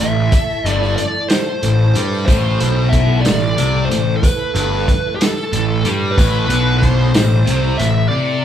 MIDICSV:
0, 0, Header, 1, 6, 480
1, 0, Start_track
1, 0, Key_signature, 0, "minor"
1, 0, Tempo, 650054
1, 238, Time_signature, 6, 3, 24, 8
1, 6239, End_track
2, 0, Start_track
2, 0, Title_t, "Lead electric guitar"
2, 0, Program_c, 0, 29
2, 0, Note_on_c, 0, 76, 105
2, 516, Note_off_c, 0, 76, 0
2, 516, Note_on_c, 0, 74, 105
2, 705, Note_off_c, 0, 74, 0
2, 708, Note_on_c, 0, 74, 94
2, 937, Note_off_c, 0, 74, 0
2, 949, Note_on_c, 0, 72, 86
2, 1465, Note_off_c, 0, 72, 0
2, 1666, Note_on_c, 0, 72, 90
2, 2134, Note_on_c, 0, 76, 93
2, 2168, Note_off_c, 0, 72, 0
2, 2368, Note_off_c, 0, 76, 0
2, 2371, Note_on_c, 0, 74, 86
2, 2836, Note_off_c, 0, 74, 0
2, 2844, Note_on_c, 0, 72, 86
2, 3071, Note_off_c, 0, 72, 0
2, 3074, Note_on_c, 0, 71, 92
2, 3803, Note_off_c, 0, 71, 0
2, 3806, Note_on_c, 0, 69, 83
2, 4333, Note_off_c, 0, 69, 0
2, 4515, Note_on_c, 0, 71, 90
2, 4986, Note_off_c, 0, 71, 0
2, 5008, Note_on_c, 0, 72, 89
2, 5741, Note_on_c, 0, 76, 89
2, 5763, Note_off_c, 0, 72, 0
2, 5968, Note_off_c, 0, 76, 0
2, 5971, Note_on_c, 0, 74, 96
2, 6239, Note_off_c, 0, 74, 0
2, 6239, End_track
3, 0, Start_track
3, 0, Title_t, "String machine"
3, 0, Program_c, 1, 50
3, 0, Note_on_c, 1, 57, 79
3, 0, Note_on_c, 1, 64, 65
3, 0, Note_on_c, 1, 69, 82
3, 6239, Note_off_c, 1, 57, 0
3, 6239, Note_off_c, 1, 64, 0
3, 6239, Note_off_c, 1, 69, 0
3, 6239, End_track
4, 0, Start_track
4, 0, Title_t, "Distorted electric guitar"
4, 0, Program_c, 2, 30
4, 2, Note_on_c, 2, 45, 67
4, 192, Note_off_c, 2, 45, 0
4, 488, Note_on_c, 2, 43, 91
4, 716, Note_off_c, 2, 43, 0
4, 1208, Note_on_c, 2, 45, 63
4, 1396, Note_off_c, 2, 45, 0
4, 1439, Note_on_c, 2, 55, 92
4, 1673, Note_off_c, 2, 55, 0
4, 1678, Note_on_c, 2, 45, 99
4, 1912, Note_off_c, 2, 45, 0
4, 1927, Note_on_c, 2, 47, 92
4, 2397, Note_off_c, 2, 47, 0
4, 2404, Note_on_c, 2, 45, 67
4, 2595, Note_off_c, 2, 45, 0
4, 2638, Note_on_c, 2, 48, 94
4, 2872, Note_off_c, 2, 48, 0
4, 2879, Note_on_c, 2, 45, 70
4, 3072, Note_off_c, 2, 45, 0
4, 3356, Note_on_c, 2, 43, 98
4, 3591, Note_off_c, 2, 43, 0
4, 4081, Note_on_c, 2, 45, 69
4, 4272, Note_off_c, 2, 45, 0
4, 4322, Note_on_c, 2, 55, 97
4, 4553, Note_off_c, 2, 55, 0
4, 4555, Note_on_c, 2, 45, 104
4, 4785, Note_off_c, 2, 45, 0
4, 4788, Note_on_c, 2, 47, 96
4, 5265, Note_off_c, 2, 47, 0
4, 5269, Note_on_c, 2, 45, 74
4, 5465, Note_off_c, 2, 45, 0
4, 5502, Note_on_c, 2, 48, 101
4, 5741, Note_off_c, 2, 48, 0
4, 5755, Note_on_c, 2, 45, 73
4, 5947, Note_off_c, 2, 45, 0
4, 5983, Note_on_c, 2, 48, 104
4, 6221, Note_off_c, 2, 48, 0
4, 6239, End_track
5, 0, Start_track
5, 0, Title_t, "Picked electric bass"
5, 0, Program_c, 3, 34
5, 8, Note_on_c, 3, 33, 67
5, 227, Note_off_c, 3, 33, 0
5, 477, Note_on_c, 3, 31, 93
5, 701, Note_off_c, 3, 31, 0
5, 1206, Note_on_c, 3, 33, 68
5, 1426, Note_off_c, 3, 33, 0
5, 1442, Note_on_c, 3, 43, 84
5, 1665, Note_off_c, 3, 43, 0
5, 1684, Note_on_c, 3, 33, 94
5, 1906, Note_off_c, 3, 33, 0
5, 1931, Note_on_c, 3, 35, 89
5, 2376, Note_off_c, 3, 35, 0
5, 2413, Note_on_c, 3, 33, 81
5, 2630, Note_off_c, 3, 33, 0
5, 2659, Note_on_c, 3, 36, 84
5, 2874, Note_off_c, 3, 36, 0
5, 2891, Note_on_c, 3, 33, 74
5, 3109, Note_off_c, 3, 33, 0
5, 3356, Note_on_c, 3, 31, 94
5, 3581, Note_off_c, 3, 31, 0
5, 4082, Note_on_c, 3, 33, 72
5, 4304, Note_off_c, 3, 33, 0
5, 4316, Note_on_c, 3, 43, 85
5, 4541, Note_off_c, 3, 43, 0
5, 4561, Note_on_c, 3, 33, 87
5, 4783, Note_off_c, 3, 33, 0
5, 4787, Note_on_c, 3, 35, 90
5, 5242, Note_off_c, 3, 35, 0
5, 5278, Note_on_c, 3, 33, 81
5, 5500, Note_off_c, 3, 33, 0
5, 5515, Note_on_c, 3, 36, 81
5, 5738, Note_off_c, 3, 36, 0
5, 5751, Note_on_c, 3, 33, 74
5, 5976, Note_off_c, 3, 33, 0
5, 6239, End_track
6, 0, Start_track
6, 0, Title_t, "Drums"
6, 6, Note_on_c, 9, 54, 27
6, 80, Note_off_c, 9, 54, 0
6, 237, Note_on_c, 9, 42, 77
6, 238, Note_on_c, 9, 36, 102
6, 242, Note_on_c, 9, 54, 91
6, 311, Note_off_c, 9, 42, 0
6, 312, Note_off_c, 9, 36, 0
6, 316, Note_off_c, 9, 54, 0
6, 369, Note_on_c, 9, 54, 28
6, 443, Note_off_c, 9, 54, 0
6, 487, Note_on_c, 9, 42, 60
6, 561, Note_off_c, 9, 42, 0
6, 615, Note_on_c, 9, 54, 28
6, 688, Note_off_c, 9, 54, 0
6, 722, Note_on_c, 9, 42, 65
6, 796, Note_off_c, 9, 42, 0
6, 957, Note_on_c, 9, 42, 85
6, 964, Note_on_c, 9, 38, 109
6, 971, Note_on_c, 9, 54, 92
6, 1031, Note_off_c, 9, 42, 0
6, 1038, Note_off_c, 9, 38, 0
6, 1044, Note_off_c, 9, 54, 0
6, 1202, Note_on_c, 9, 42, 63
6, 1276, Note_off_c, 9, 42, 0
6, 1443, Note_on_c, 9, 42, 67
6, 1517, Note_off_c, 9, 42, 0
6, 1574, Note_on_c, 9, 54, 28
6, 1648, Note_off_c, 9, 54, 0
6, 1682, Note_on_c, 9, 42, 81
6, 1683, Note_on_c, 9, 36, 103
6, 1697, Note_on_c, 9, 54, 91
6, 1756, Note_off_c, 9, 42, 0
6, 1757, Note_off_c, 9, 36, 0
6, 1771, Note_off_c, 9, 54, 0
6, 1922, Note_on_c, 9, 42, 65
6, 1996, Note_off_c, 9, 42, 0
6, 2162, Note_on_c, 9, 36, 73
6, 2162, Note_on_c, 9, 42, 67
6, 2236, Note_off_c, 9, 36, 0
6, 2236, Note_off_c, 9, 42, 0
6, 2399, Note_on_c, 9, 42, 89
6, 2406, Note_on_c, 9, 38, 107
6, 2408, Note_on_c, 9, 54, 93
6, 2473, Note_off_c, 9, 42, 0
6, 2480, Note_off_c, 9, 38, 0
6, 2482, Note_off_c, 9, 54, 0
6, 2532, Note_on_c, 9, 54, 29
6, 2606, Note_off_c, 9, 54, 0
6, 2643, Note_on_c, 9, 42, 70
6, 2664, Note_on_c, 9, 54, 27
6, 2717, Note_off_c, 9, 42, 0
6, 2738, Note_off_c, 9, 54, 0
6, 2890, Note_on_c, 9, 42, 70
6, 2901, Note_on_c, 9, 54, 30
6, 2964, Note_off_c, 9, 42, 0
6, 2975, Note_off_c, 9, 54, 0
6, 3124, Note_on_c, 9, 36, 105
6, 3126, Note_on_c, 9, 42, 85
6, 3134, Note_on_c, 9, 54, 90
6, 3198, Note_off_c, 9, 36, 0
6, 3199, Note_off_c, 9, 42, 0
6, 3208, Note_off_c, 9, 54, 0
6, 3363, Note_on_c, 9, 42, 66
6, 3437, Note_off_c, 9, 42, 0
6, 3604, Note_on_c, 9, 36, 75
6, 3606, Note_on_c, 9, 42, 65
6, 3678, Note_off_c, 9, 36, 0
6, 3679, Note_off_c, 9, 42, 0
6, 3846, Note_on_c, 9, 42, 88
6, 3848, Note_on_c, 9, 54, 91
6, 3853, Note_on_c, 9, 38, 107
6, 3920, Note_off_c, 9, 42, 0
6, 3921, Note_off_c, 9, 54, 0
6, 3927, Note_off_c, 9, 38, 0
6, 3971, Note_on_c, 9, 54, 30
6, 4045, Note_off_c, 9, 54, 0
6, 4083, Note_on_c, 9, 42, 68
6, 4084, Note_on_c, 9, 54, 27
6, 4157, Note_off_c, 9, 42, 0
6, 4158, Note_off_c, 9, 54, 0
6, 4319, Note_on_c, 9, 42, 66
6, 4332, Note_on_c, 9, 54, 28
6, 4393, Note_off_c, 9, 42, 0
6, 4406, Note_off_c, 9, 54, 0
6, 4561, Note_on_c, 9, 36, 102
6, 4562, Note_on_c, 9, 42, 78
6, 4570, Note_on_c, 9, 54, 92
6, 4635, Note_off_c, 9, 36, 0
6, 4635, Note_off_c, 9, 42, 0
6, 4644, Note_off_c, 9, 54, 0
6, 4799, Note_on_c, 9, 42, 64
6, 4873, Note_off_c, 9, 42, 0
6, 5040, Note_on_c, 9, 36, 76
6, 5043, Note_on_c, 9, 42, 61
6, 5114, Note_off_c, 9, 36, 0
6, 5117, Note_off_c, 9, 42, 0
6, 5275, Note_on_c, 9, 42, 88
6, 5282, Note_on_c, 9, 38, 111
6, 5287, Note_on_c, 9, 54, 98
6, 5349, Note_off_c, 9, 42, 0
6, 5356, Note_off_c, 9, 38, 0
6, 5361, Note_off_c, 9, 54, 0
6, 5420, Note_on_c, 9, 54, 33
6, 5494, Note_off_c, 9, 54, 0
6, 5518, Note_on_c, 9, 42, 67
6, 5524, Note_on_c, 9, 54, 30
6, 5592, Note_off_c, 9, 42, 0
6, 5598, Note_off_c, 9, 54, 0
6, 5755, Note_on_c, 9, 42, 70
6, 5768, Note_on_c, 9, 54, 32
6, 5829, Note_off_c, 9, 42, 0
6, 5841, Note_off_c, 9, 54, 0
6, 6239, End_track
0, 0, End_of_file